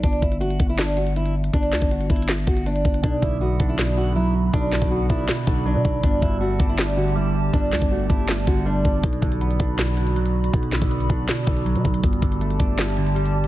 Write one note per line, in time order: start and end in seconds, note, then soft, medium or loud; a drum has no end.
0.03 0.22 G1 loud
0.03 0.21 D4 loud
0.03 kick loud
0.03 closed hi-hat medium
0.13 closed hi-hat soft
0.22 0.58 G1 loud
0.22 0.39 E4 medium
0.22 kick medium
0.22 closed hi-hat medium
0.32 closed hi-hat medium
0.41 0.67 F#4 medium
0.41 closed hi-hat medium
0.50 closed hi-hat medium
0.60 1.50 G1 loud
0.60 kick loud
0.60 closed hi-hat medium
0.69 0.78 E4 medium
0.78 0.96 D4 medium
0.78 snare loud
0.78 clap loud
0.78 closed hi-hat medium
0.88 closed hi-hat soft
0.97 1.14 F#4 medium
0.97 closed hi-hat medium
1.07 closed hi-hat medium
1.16 1.33 E4 medium
1.16 closed hi-hat medium
1.26 closed hi-hat medium
1.44 closed hi-hat medium
1.53 1.74 G1 loud
1.53 1.89 D4 loud
1.53 kick loud
1.53 closed hi-hat medium
1.63 closed hi-hat medium
1.72 1.81 D2 loud
1.72 snare medium
1.72 clap medium
1.72 closed hi-hat medium
1.82 2.09 G1 loud
1.82 kick medium
1.82 closed hi-hat medium
1.91 2.08 F#4 medium
1.91 closed hi-hat medium
2.01 closed hi-hat medium
2.10 2.46 G1 loud
2.10 2.27 E4 medium
2.10 kick loud
2.10 closed hi-hat soft
2.10 open hi-hat medium
2.16 closed hi-hat medium
2.22 closed hi-hat medium
2.28 snare loud
2.28 clap loud
2.28 closed hi-hat medium
2.38 closed hi-hat soft
2.47 2.83 G1 loud
2.47 2.65 F#4 medium
2.47 kick loud
2.47 closed hi-hat medium
2.57 closed hi-hat medium
2.66 3.01 D4 medium
2.66 closed hi-hat medium
2.76 closed hi-hat medium
2.85 3.03 G1 loud
2.85 kick medium
2.94 closed hi-hat medium
3.03 3.22 B1 loud
3.03 3.76 B2 medium
3.03 3.21 D4 loud
3.03 6.01 F#4 medium
3.03 12.00 D5 medium
3.03 6.01 B5 medium
3.03 kick loud
3.22 3.58 B1 loud
3.22 3.96 D3 medium
3.22 3.40 E4 medium
3.22 kick loud
3.41 4.35 B3 medium
3.41 3.67 F#4 medium
3.60 4.50 B1 loud
3.60 4.54 D4 medium
3.60 kick loud
3.69 3.78 E4 medium
3.77 4.52 B2 medium
3.77 3.96 D4 medium
3.77 snare loud
3.77 clap loud
3.97 4.71 D3 medium
3.97 4.15 F#4 medium
4.16 5.10 F#3 medium
4.16 4.33 E4 medium
4.54 4.81 B1 loud
4.54 5.27 B2 medium
4.54 4.89 D4 loud
4.54 kick loud
4.72 5.46 D3 medium
4.72 snare medium
4.72 clap medium
4.82 5.09 B1 loud
4.82 kick loud
4.91 5.85 B3 medium
4.91 5.08 F#4 medium
5.09 5.28 B1 loud
5.09 6.03 D4 medium
5.09 5.27 E4 medium
5.09 kick loud
5.28 6.03 B2 medium
5.28 snare loud
5.28 clap loud
5.47 5.77 B1 loud
5.47 6.04 D3 medium
5.47 5.65 F#4 medium
5.47 kick loud
5.66 6.03 F#3 medium
5.66 6.01 D4 medium
5.75 5.84 B2 loud
5.85 6.03 B1 loud
5.85 kick medium
6.03 6.22 G1 loud
6.03 6.77 G2 medium
6.03 6.21 D4 loud
6.03 9.01 G4 medium
6.03 9.01 A5 medium
6.03 kick loud
6.22 6.58 G1 loud
6.22 6.96 D3 medium
6.22 6.39 E4 medium
6.22 kick loud
6.40 7.35 A3 medium
6.40 6.67 F#4 medium
6.59 7.50 G1 loud
6.59 7.53 D4 medium
6.59 kick loud
6.69 6.78 E4 medium
6.78 7.52 G2 medium
6.78 6.96 D4 medium
6.78 snare loud
6.78 clap loud
6.97 7.71 D3 medium
6.97 7.14 F#4 medium
7.15 8.09 G3 medium
7.15 7.33 E4 medium
7.53 7.74 G1 loud
7.53 8.28 G2 medium
7.53 7.89 D4 loud
7.53 kick loud
7.72 7.81 D2 loud
7.72 8.46 D3 medium
7.72 snare medium
7.72 clap medium
7.82 8.09 G1 loud
7.82 kick medium
7.91 8.85 A3 medium
7.91 8.08 F#4 medium
8.09 8.46 G1 loud
8.09 9.03 D4 medium
8.09 8.27 E4 medium
8.09 kick loud
8.28 9.04 G2 medium
8.28 snare loud
8.28 clap loud
8.47 8.83 G1 loud
8.47 9.02 D3 medium
8.47 8.65 F#4 medium
8.47 kick loud
8.66 9.03 G3 medium
8.66 9.01 D4 medium
8.85 9.03 G1 loud
8.85 kick medium
9.02 9.22 B1 loud
9.02 9.76 B2 medium
9.02 12.01 F#4 medium
9.02 12.01 B5 medium
9.02 kick loud
9.02 closed hi-hat medium
9.13 closed hi-hat medium
9.22 9.58 B1 loud
9.22 9.96 D3 medium
9.22 kick medium
9.22 closed hi-hat medium
9.32 closed hi-hat medium
9.41 10.35 B3 medium
9.41 closed hi-hat medium
9.51 closed hi-hat medium
9.60 10.50 B1 loud
9.60 10.54 D4 medium
9.60 kick medium
9.60 closed hi-hat medium
9.77 10.52 B2 medium
9.77 snare loud
9.77 clap loud
9.77 closed hi-hat medium
9.88 closed hi-hat soft
9.97 10.71 D3 medium
9.97 closed hi-hat medium
10.07 closed hi-hat medium
10.16 11.10 F#3 medium
10.16 closed hi-hat medium
10.26 closed hi-hat medium
10.44 closed hi-hat medium
10.53 10.81 B1 loud
10.53 11.27 B2 medium
10.53 kick loud
10.53 closed hi-hat medium
10.63 closed hi-hat medium
10.72 11.46 D3 medium
10.72 snare medium
10.72 clap medium
10.72 closed hi-hat medium
10.82 11.09 B1 loud
10.82 kick loud
10.82 closed hi-hat medium
10.91 11.85 B3 medium
10.91 closed hi-hat medium
11.00 closed hi-hat medium
11.09 11.28 B1 loud
11.09 12.03 D4 loud
11.09 kick loud
11.09 closed hi-hat medium
11.28 12.03 B2 medium
11.28 snare loud
11.28 clap loud
11.28 closed hi-hat medium
11.38 closed hi-hat soft
11.47 11.77 B1 loud
11.47 12.03 D3 medium
11.47 kick loud
11.47 closed hi-hat medium
11.57 closed hi-hat medium
11.65 12.03 F#3 medium
11.65 closed hi-hat medium
11.75 11.84 B2 loud
11.75 closed hi-hat medium
11.85 12.03 B1 loud
11.85 kick medium
11.94 closed hi-hat medium
12.04 12.22 G1 loud
12.04 12.77 G2 medium
12.04 13.47 G4 medium
12.04 13.47 D5 medium
12.04 13.47 A5 medium
12.04 kick loud
12.04 closed hi-hat medium
12.13 closed hi-hat medium
12.22 12.58 G1 loud
12.22 12.96 D3 medium
12.22 kick loud
12.22 closed hi-hat medium
12.32 closed hi-hat medium
12.41 13.35 A3 medium
12.41 closed hi-hat medium
12.51 closed hi-hat medium
12.59 13.47 G1 loud
12.59 13.47 D4 medium
12.59 kick loud
12.59 closed hi-hat medium
12.78 13.47 G2 medium
12.78 snare loud
12.78 clap loud
12.78 closed hi-hat medium
12.88 closed hi-hat soft
12.97 13.47 D3 medium
12.97 closed hi-hat medium
13.07 closed hi-hat medium
13.15 13.47 G3 loud
13.15 closed hi-hat medium
13.26 closed hi-hat medium
13.44 closed hi-hat medium